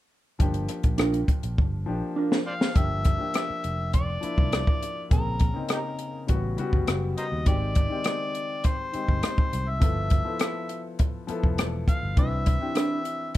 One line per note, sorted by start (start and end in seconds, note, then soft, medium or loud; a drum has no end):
0.39 0.66 G1 medium
0.39 1.31 F3 medium
0.39 1.31 A#3 medium
0.39 1.32 D4 medium
0.39 1.32 G4 medium
0.39 kick medium
0.39 closed hi-hat medium
0.54 closed hi-hat soft
0.69 cross-stick soft
0.69 closed hi-hat medium
0.83 1.23 A#1 medium
0.83 kick medium
0.83 closed hi-hat medium
0.98 1.20 D4 medium
0.98 1.21 F4 medium
0.98 1.21 A#4 medium
0.98 cross-stick medium
0.98 closed hi-hat medium
1.14 closed hi-hat soft
1.28 muted fingered electric bass stroke soft
1.28 kick medium
1.28 closed hi-hat medium
1.43 1.57 A#1 medium
1.43 closed hi-hat medium
1.58 1.84 G1 medium
1.58 kick medium
1.86 2.01 A#1 medium
1.86 2.55 F3 medium
1.86 2.55 A#3 medium
1.86 2.56 D4 medium
1.86 2.56 G4 medium
2.16 2.38 D4 medium
2.16 2.39 F4 medium
2.16 2.39 A#4 medium
2.32 snare medium
2.47 2.54 C5 medium
2.47 2.53 D5 medium
2.47 2.78 F5 medium
2.61 snare medium
2.74 3.15 G1 medium
2.74 3.09 F3 medium
2.74 3.09 A#3 medium
2.74 3.10 D4 medium
2.74 3.10 G4 medium
2.74 3.93 E5 loud
2.74 kick medium
2.74 closed hi-hat medium
3.05 kick medium
3.05 cross-stick soft
3.05 closed hi-hat medium
3.18 3.99 F3 medium
3.18 3.99 A#3 medium
3.18 4.00 D4 medium
3.18 4.00 G4 medium
3.34 cross-stick loud
3.34 closed hi-hat medium
3.50 muted fingered electric bass stroke soft
3.64 4.16 F1 medium
3.64 closed hi-hat soft
3.94 5.07 D5 medium
3.94 kick medium
3.94 closed hi-hat medium
4.21 4.90 F3 medium
4.21 4.91 A#3 medium
4.21 4.91 D4 medium
4.21 4.92 E4 medium
4.21 muted fingered electric bass stroke soft
4.21 closed hi-hat medium
4.38 4.64 C2 medium
4.38 kick medium
4.53 cross-stick loud
4.53 closed hi-hat medium
4.67 kick medium
4.83 closed hi-hat medium
5.09 5.50 A#1 medium
5.09 5.45 C#3 medium
5.09 5.45 A#3 medium
5.09 5.45 C4 medium
5.09 5.46 G#4 medium
5.09 5.67 A#4 medium
5.09 kick loud
5.09 closed hi-hat medium
5.40 kick medium
5.40 closed hi-hat medium
5.54 6.25 C#3 medium
5.54 6.28 A#3 medium
5.54 6.29 C4 medium
5.54 6.29 D#4 medium
5.69 cross-stick loud
5.69 closed hi-hat medium
5.73 5.80 D#4 soft
5.73 5.80 G4 soft
5.73 6.26 A#4 medium
5.99 closed hi-hat medium
6.27 6.55 A1 medium
6.27 6.51 C#3 medium
6.27 6.52 G3 medium
6.27 6.52 B3 medium
6.27 6.53 F#4 medium
6.27 kick medium
6.27 closed hi-hat medium
6.57 7.26 C#3 medium
6.57 7.26 G3 medium
6.57 7.27 B3 medium
6.57 7.27 F#4 medium
6.57 muted fingered electric bass stroke soft
6.57 closed hi-hat medium
6.73 6.86 G1 medium
6.73 kick medium
6.87 7.14 F#1 medium
6.87 cross-stick loud
6.87 closed hi-hat medium
7.18 7.27 A#4 medium
7.18 7.24 C5 medium
7.18 7.45 D#5 medium
7.18 closed hi-hat medium
7.32 7.45 D#2 medium
7.46 7.86 G#1 loud
7.46 7.80 D#3 medium
7.46 7.81 G#3 medium
7.46 7.81 C4 medium
7.46 7.81 G4 medium
7.46 8.68 D5 loud
7.46 kick loud
7.46 closed hi-hat medium
7.75 kick medium
7.75 closed hi-hat medium
7.89 8.70 D#3 medium
7.89 8.70 G#3 medium
7.89 8.71 C4 medium
7.89 8.71 G4 medium
8.04 cross-stick loud
8.04 closed hi-hat medium
8.35 closed hi-hat medium
8.64 9.71 C5 medium
8.64 kick medium
8.64 closed hi-hat medium
8.92 9.61 D#3 medium
8.92 9.62 G#3 medium
8.92 9.62 C4 medium
8.92 9.62 G4 medium
8.92 muted fingered electric bass stroke soft
8.92 closed hi-hat medium
9.08 9.22 G1 medium
9.08 kick medium
9.23 cross-stick loud
9.23 closed hi-hat medium
9.38 kick medium
9.53 9.79 C2 medium
9.53 closed hi-hat medium
9.69 10.86 E5 medium
9.80 10.21 G1 medium
9.80 10.15 F3 medium
9.80 10.16 B3 medium
9.80 10.16 E4 medium
9.80 10.16 A4 medium
9.80 kick loud
9.80 closed hi-hat medium
10.10 kick medium
10.10 closed hi-hat medium
10.25 11.05 F3 medium
10.25 11.05 B3 medium
10.25 11.06 E4 medium
10.25 11.06 A4 medium
10.39 cross-stick loud
10.39 closed hi-hat medium
10.69 closed hi-hat medium
10.99 kick medium
10.99 closed hi-hat medium
11.27 11.96 F3 medium
11.27 11.97 B3 medium
11.27 11.97 E4 medium
11.27 11.98 A4 medium
11.27 muted fingered electric bass stroke soft
11.27 closed hi-hat medium
11.44 11.59 F1 medium
11.44 kick medium
11.58 11.85 E1 medium
11.58 cross-stick loud
11.58 closed hi-hat medium
11.88 12.16 F5 medium
11.88 kick medium
11.88 closed hi-hat medium
12.03 12.16 G1 medium
12.16 12.56 C2 loud
12.16 12.51 E3 medium
12.16 12.51 C4 medium
12.16 12.51 D4 medium
12.16 12.52 B4 medium
12.16 13.31 E5 loud
12.16 kick medium
12.16 closed hi-hat medium
12.46 kick medium
12.46 closed hi-hat medium
12.60 13.37 E3 medium
12.60 13.37 C4 medium
12.60 13.37 D4 medium
12.60 13.37 G4 medium
12.75 12.97 D4 medium
12.75 12.98 E4 medium
12.75 12.98 B4 medium
12.75 cross-stick medium
12.75 closed hi-hat medium
13.05 closed hi-hat medium